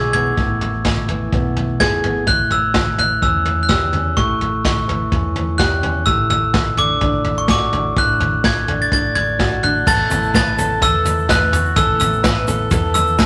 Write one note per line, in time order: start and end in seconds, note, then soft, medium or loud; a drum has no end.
0.00 0.33 B1 medium
0.00 0.36 A2 soft
0.00 1.09 E3 medium
0.00 0.35 G#3 medium
0.00 0.14 B3 soft
0.00 0.35 G#4 medium
0.00 0.12 G#6 medium
0.13 1.32 B3 medium
0.13 1.04 G#6 medium
0.13 floor tom medium
0.37 1.28 A1 medium
0.37 1.78 A2 medium
0.37 kick medium
0.37 floor tom medium
0.61 floor tom medium
0.85 kick medium
0.85 snare medium
0.85 floor tom medium
1.08 2.98 E3 medium
1.08 floor tom medium
1.32 1.77 B1 medium
1.32 2.03 B3 soft
1.32 kick medium
1.32 floor tom medium
1.57 floor tom medium
1.80 2.01 F#1 medium
1.80 2.26 A2 medium
1.80 2.24 G#4 medium
1.80 2.24 G#6 medium
1.80 kick medium
1.80 snare medium
1.80 floor tom medium
2.03 2.25 G#1 medium
2.03 2.27 B3 medium
2.03 floor tom medium
2.27 3.18 A1 medium
2.27 3.69 A2 medium
2.27 2.49 F#6 medium
2.27 kick medium
2.27 floor tom medium
2.51 3.00 E6 medium
2.51 floor tom medium
2.74 kick medium
2.74 snare medium
2.74 floor tom medium
2.98 4.14 E3 medium
2.98 3.21 F#6 medium
2.98 floor tom medium
3.22 4.13 E2 medium
3.22 3.93 C#4 soft
3.22 3.64 E6 medium
3.22 kick medium
3.22 floor tom medium
3.45 floor tom medium
3.63 3.70 F#6 medium
3.69 4.17 E2 medium
3.69 4.14 G4 medium
3.69 4.18 E6 medium
3.69 kick medium
3.69 snare medium
3.69 floor tom medium
3.93 4.15 C#4 soft
3.93 floor tom medium
4.16 5.08 A1 medium
4.16 5.59 A2 medium
4.16 4.61 C#6 medium
4.16 kick medium
4.16 floor tom medium
4.41 floor tom medium
4.65 5.09 C#6 medium
4.65 kick medium
4.65 snare medium
4.65 floor tom medium
4.88 6.04 E3 soft
4.88 floor tom medium
5.12 6.03 E2 medium
5.12 5.82 C#4 soft
5.12 kick medium
5.12 floor tom medium
5.36 floor tom medium
5.58 6.06 E2 medium
5.58 6.04 G4 medium
5.58 6.08 F#6 medium
5.58 kick medium
5.58 snare medium
5.58 floor tom medium
5.83 6.04 C#4 medium
5.83 floor tom medium
6.06 6.98 A1 medium
6.06 6.78 A2 medium
6.06 6.29 E6 medium
6.06 kick medium
6.06 floor tom medium
6.30 6.75 E6 medium
6.30 floor tom medium
6.54 kick medium
6.54 snare loud
6.54 floor tom medium
6.77 8.67 D3 medium
6.77 7.34 D6 medium
6.77 floor tom medium
7.01 7.93 A1 medium
7.01 7.72 D4 medium
7.01 kick medium
7.01 floor tom medium
7.24 floor tom medium
7.38 7.50 C#6 medium
7.48 7.96 A2 medium
7.48 7.94 F#4 medium
7.48 7.99 D6 medium
7.48 kick medium
7.48 snare medium
7.48 floor tom medium
7.73 7.94 D4 medium
7.73 floor tom medium
7.96 8.88 A1 medium
7.96 8.68 A2 medium
7.96 8.46 F#6 medium
7.96 kick medium
7.96 floor tom medium
8.20 floor tom medium
8.44 8.81 G#6 medium
8.44 kick medium
8.44 snare medium
8.44 floor tom medium
8.68 9.87 D3 soft
8.68 floor tom medium
8.82 8.92 A6 medium
8.92 9.83 A1 medium
8.92 9.62 D4 soft
8.92 9.60 A6 medium
8.92 kick medium
8.92 floor tom medium
9.15 9.64 G#6 medium
9.15 floor tom medium
9.39 11.76 A2 soft
9.39 9.84 F#4 medium
9.39 kick medium
9.39 snare medium
9.39 floor tom medium
9.63 9.84 D4 soft
9.63 9.88 F#6 medium
9.63 floor tom medium
9.85 10.09 A1 medium
9.85 10.10 A2 medium
9.85 10.10 E3 medium
9.85 10.10 B3 medium
9.85 10.10 C#4 medium
9.85 10.09 E4 medium
9.85 10.33 A4 medium
9.85 10.34 A6 loud
9.85 kick loud
9.85 floor tom loud
9.85 crash medium
9.85 shaker medium
10.10 10.78 A1 medium
10.10 10.33 B3 soft
10.10 10.34 C#4 soft
10.10 10.34 E4 medium
10.10 floor tom medium
10.10 shaker medium
10.23 shaker soft
10.34 10.58 A2 medium
10.34 10.58 E3 medium
10.34 10.58 B3 medium
10.34 10.57 C#4 medium
10.34 10.56 E4 medium
10.34 10.57 B4 medium
10.34 10.84 A6 medium
10.34 kick loud
10.34 snare loud
10.34 shaker medium
10.57 10.81 B3 soft
10.57 10.82 C#4 soft
10.57 10.81 E4 soft
10.57 10.80 A4 medium
10.57 floor tom medium
10.57 shaker medium
10.81 11.72 E2 medium
10.81 11.28 E3 medium
10.81 11.29 B3 medium
10.81 11.29 C#4 medium
10.81 11.30 E4 medium
10.81 11.28 A4 medium
10.81 11.31 E6 medium
10.81 kick medium
10.81 floor tom loud
10.81 shaker medium
11.05 floor tom medium
11.05 shaker medium
11.18 shaker soft
11.29 11.53 A2 medium
11.29 11.53 E3 medium
11.29 11.53 B3 medium
11.29 11.52 C#4 medium
11.29 11.51 E4 medium
11.29 11.52 B4 medium
11.29 11.74 F#6 medium
11.29 kick loud
11.29 snare loud
11.29 shaker medium
11.52 11.76 B3 soft
11.52 11.76 C#4 soft
11.52 11.76 E4 medium
11.52 11.76 F#4 medium
11.52 floor tom medium
11.52 shaker medium
11.76 11.99 A1 medium
11.76 12.00 A2 medium
11.76 12.00 E3 medium
11.76 12.01 B3 medium
11.76 12.01 C#4 medium
11.76 11.99 E4 medium
11.76 12.23 A4 medium
11.76 11.99 E6 medium
11.76 kick loud
11.76 floor tom loud
11.76 shaker medium
12.00 12.67 A1 medium
12.00 12.23 B3 soft
12.00 12.23 C#4 soft
12.00 12.24 E4 medium
12.00 12.67 E6 medium
12.00 floor tom medium
12.00 shaker medium
12.13 shaker soft
12.23 12.47 A2 medium
12.23 12.48 E3 medium
12.23 12.48 B3 medium
12.23 12.48 C#4 medium
12.23 12.46 E4 medium
12.23 12.47 B4 medium
12.23 kick loud
12.23 snare loud
12.23 shaker medium
12.47 12.71 B3 soft
12.47 12.72 C#4 soft
12.47 12.71 E4 soft
12.47 12.70 A4 medium
12.47 floor tom medium
12.47 shaker medium
12.71 13.26 E2 medium
12.71 13.18 E3 medium
12.71 13.19 B3 medium
12.71 13.18 C#4 medium
12.71 13.19 E4 medium
12.71 13.18 A4 medium
12.71 kick loud
12.71 floor tom loud
12.71 shaker medium
12.94 13.26 E6 medium
12.94 floor tom medium
12.94 shaker medium
13.07 shaker soft
13.18 13.26 A2 medium
13.18 13.26 E3 medium
13.18 13.26 B3 medium
13.18 13.26 C#4 medium
13.18 13.26 E4 medium
13.18 13.26 B4 medium
13.18 kick loud
13.18 snare medium
13.18 shaker medium